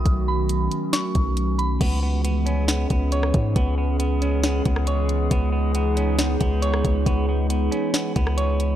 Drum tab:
CC |----------------|x---------------|----------------|----------------|
HH |x---x-x-x-x-x-x-|x---x-x-x-x-x-x-|x---x-x-x-x-x-x-|x---x-x-x-x-x-x-|
SD |--------o-------|--------o----r--|--------o--r----|--------o----r--|
BD |o---------o-----|o---------o---o-|o---------o-----|o---------o---o-|

CC |----------------|
HH |x---x-x-x-x-x-x-|
SD |--------o--r----|
BD |o---------o-----|